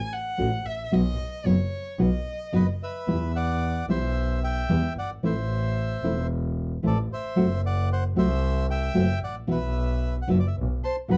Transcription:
Already playing: G#5
0.12 F#5
0.38 A1 A3 C#4 F#4
0.65 A1 E5
0.92 B1 B2 F#3 B3 D#4 F#4 D#5
1.45 F#1 B2 F#3 B3 D#4 F#4 C#5
1.99 B1 B2 F#3 B3 D#4 F#4 D#5
2.53 F#1 B2 F#3 B3 D#4 F#4 B4 D#5
2.83 B4 E5
3.07 E2 B2 E3 G3 B3 E4
3.36 D5 F#5
3.88 B1 B2 E3 G3 B3 E4 C5 E5
4.44 E5 G5
4.69 E2 B2 E3 G3 B3 E4
4.97 G1 D5 F#5
5.23 A1 E3 A3 C4 E4 C5 E5
6.03 E1 E3 A3 C4 E4
6.83 A1 E3 A3 C4 E4 A4
6.87 D5
7.13 C5 E5
7.36 F#1 F#3 A3 C4 F#4
7.66 D5 F#5
7.93 C5 F#5
8.16 C2 F#3 A3 C4 F#4 C5 E5
8.71 E5 G5
8.94 F#1 F#3 A3 C4 F#4
9.21 A1 D5 F#5
9.47 B1 B2 E3 B3 E4 F#4 E5
9.52 B4
10.22 F#5
10.27 F#1 B2 F#3 B3 D#4 F#4 E5
10.40 D5
10.47 E5
10.56 B1
10.84 C5 A5 C6
11.08 F#1 B2 F#3 B3 D#4 F#4 B4
11.12 F#5 B5

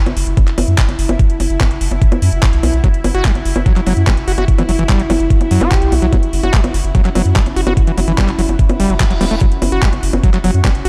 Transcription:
Already playing: C#4 E4 F#4 F#5 A5
0.06 F#1, closed hi-hat, high bongo
0.17 F#1, open hi-hat
0.27 F#1, closed hi-hat
0.37 kick, closed hi-hat, high bongo
0.47 clap, closed hi-hat
0.58 F#1, open hi-hat, high bongo
0.68 F#2
0.78 kick, clap, closed hi-hat
0.89 F#1, closed hi-hat, high bongo
0.99 F#1, open hi-hat
1.09 F#1, closed hi-hat, high bongo
1.19 kick, closed hi-hat
1.30 closed hi-hat
1.40 F#1, open hi-hat, high bongo
1.50 F#1, closed hi-hat
1.61 kick, clap, closed hi-hat, high bongo
1.71 F#1, closed hi-hat
1.81 F#1, open hi-hat
1.91 F#1, high bongo
2.02 kick, closed hi-hat
2.12 closed hi-hat, high bongo
2.22 F#2, open hi-hat
2.32 F#1, closed hi-hat
2.43 kick, clap, closed hi-hat, high bongo
2.53 B1, closed hi-hat
2.63 B1, open hi-hat, high bongo
2.73 B1, closed hi-hat
2.84 F#3, kick, closed hi-hat, high bongo
2.94 C#6, closed hi-hat
3.04 F#1, open hi-hat, high bongo
3.15 F#1 F#4, closed hi-hat
3.25 F#3, kick, clap, closed hi-hat
3.35 F#1, closed hi-hat, high bongo
3.45 F#1, open hi-hat
3.56 F#1, high bongo
3.66 F#3, kick, closed hi-hat
3.76 F#3, clap, closed hi-hat
3.87 F#1 F#3, open hi-hat, high bongo
3.97 F#2, closed hi-hat
4.07 G3, kick, clap, closed hi-hat, high bongo
4.17 F#1, closed hi-hat
4.28 F#1 F#4, open hi-hat
4.38 F#1 F#4, closed hi-hat, high bongo
4.48 kick, closed hi-hat
4.58 E3, closed hi-hat, high bongo
4.69 F#1 F#3, open hi-hat
4.79 F#1 E3, closed hi-hat
4.89 G3, kick, clap, closed hi-hat, high bongo
5.00 F#1 F#3, closed hi-hat
5.10 F#1 F#3, open hi-hat, high bongo
5.20 F#1, closed hi-hat
5.30 kick, closed hi-hat
5.41 closed hi-hat, high bongo
5.51 F#2 F#3, open hi-hat
5.61 F#1 F#4, closed hi-hat, high bongo
5.71 G4, kick, clap, closed hi-hat
5.82 B1, closed hi-hat
5.92 B1 F#4, open hi-hat, high bongo
6.02 B1 F#3, closed hi-hat
6.13 F#3, kick, closed hi-hat, high bongo
6.23 B5, closed hi-hat
6.33 F#1, open hi-hat
6.43 F#1 F#4, closed hi-hat, high bongo
6.54 F#3, kick, clap, closed hi-hat
6.64 F#1, closed hi-hat, high bongo
6.74 F#1, open hi-hat
6.84 F#1, closed hi-hat
6.95 F#3, kick, closed hi-hat, high bongo
7.05 F#3, clap, closed hi-hat
7.15 F#1 F#3, open hi-hat, high bongo
7.26 F#2, closed hi-hat
7.36 G3, kick, clap, closed hi-hat
7.46 F#1, closed hi-hat, high bongo
7.56 F#1 F#4, open hi-hat
7.67 F#1 F#4, closed hi-hat, high bongo
7.77 kick, closed hi-hat
7.87 E3, closed hi-hat
7.97 F#1 F#3, open hi-hat, high bongo
8.08 F#1 E3, closed hi-hat
8.18 G3, kick, clap, closed hi-hat, high bongo
8.28 F#1 F#3, clap, closed hi-hat
8.39 F#1 F#3, open hi-hat
8.49 F#1, closed hi-hat, high bongo
8.59 kick, closed hi-hat, reverse cymbal
8.69 closed hi-hat, high bongo
8.80 F#1 G3, open hi-hat
8.90 F#1 F#3, closed hi-hat
9.00 F#3, kick, clap, closed hi-hat, high bongo
9.10 E1 F#3, closed hi-hat
9.21 E1 G3, open hi-hat, high bongo
9.31 E1 A3, closed hi-hat
9.41 F#3 F#4, kick, closed hi-hat, high bongo
9.52 C#6, closed hi-hat
9.62 F#1, open hi-hat, high bongo
9.72 F#1 F#4, closed hi-hat
9.82 F#3, kick, clap, closed hi-hat
9.93 F#1, closed hi-hat, high bongo
10.03 F#1, open hi-hat
10.13 F#1, closed hi-hat, high bongo
10.23 F#3, kick, closed hi-hat
10.34 F#3, clap, closed hi-hat
10.44 F#1 F#3, open hi-hat, high bongo
10.54 F#2, closed hi-hat
10.65 G3, kick, clap, closed hi-hat, high bongo
10.75 F#1, closed hi-hat
10.85 F#1 F#4, open hi-hat

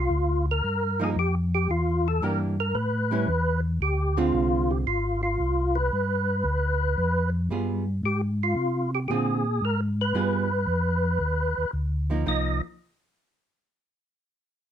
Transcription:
0.00 F4
0.10 D2
0.51 A#4
0.64 G2
1.00 F3 A#3 D#4
1.04 G#4
1.16 F2 G4
1.55 G4
1.69 E2 F4
2.08 A4
2.22 G2 E3 A#3 D4 G4 A#4
2.60 A#4
2.75 A2 B4
3.11 G3 C#4 E4
3.28 E2
3.81 D2 G4
4.17 D3 G#3 C4 F4
4.34 C2
4.71 G4
4.86 G#1 F4
5.23 F4
5.40 C2
5.75 B4
5.93 G2
6.44 D2
6.98 F2
7.50 G2 G3 B3 F4 G#4
8.03 G#2 G4
8.43 F4
8.56 C3
8.95 G4
9.08 A#2 D3 C4 F4 G4 G#4
9.62 G#2 A#4
10.01 B4
10.15 G2 G3 B3 F4 G#4
10.67 F2
11.20 D#2
11.57 D#2
11.73 D2
12.10 F3 A#3 D#4
12.26 C2 F3 A#3 D#4 D#5

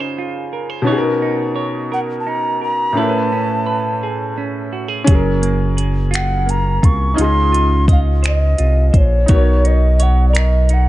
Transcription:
Already playing: C#3 C#4 D#4 F4 G#4 C5 D#5
0.00 C5
0.18 F4
0.53 A#4
0.70 C5
0.82 B2 C#4
0.86 B3 D#4 F#4 C#5
0.92 G#4
0.98 A#4
1.22 D#4
1.56 C#5
1.92 A#4 F#5
2.20 A5
2.27 D#4 A#5
2.62 A#4 A#5
2.93 A2 A3 C#4
2.97 E4 B4 A5
3.03 A#4
3.09 B4
3.32 C#4
3.66 B4
4.03 G#4
4.38 C#4
4.73 F#4
4.88 G#4
5.04 F#1 F#3 C#4 G#4, kick, closed hi-hat
5.11 G#4 A#4
5.42 A#3, closed hi-hat
5.77 G#4, closed hi-hat
6.11 F4 F#5, closed hi-hat
6.15 finger snap
6.46 A#3, closed hi-hat
6.50 A#5
6.82 C2 F4 C#6, kick, closed hi-hat
7.14 C#4 D#4 F4 D#5
7.18 C#2 G#4 C6, closed hi-hat
7.24 D#5
7.52 F4, closed hi-hat
7.88 D#5, kick, closed hi-hat
7.92 F5
8.23 C5, finger snap, closed hi-hat
8.28 D#5
8.58 C2 F4, closed hi-hat
8.90 C5 D#5
8.94 A#1 C#5, kick, closed hi-hat
9.26 B1 B3 D#4 F#4 C#5, kick, closed hi-hat
9.32 A#4 C#5
9.65 D#4 D#5, closed hi-hat
10.00 C#5 F#5, closed hi-hat
10.29 D5
10.33 A#4, finger snap, closed hi-hat
10.38 D#5
10.69 D#4, closed hi-hat
10.74 F#5

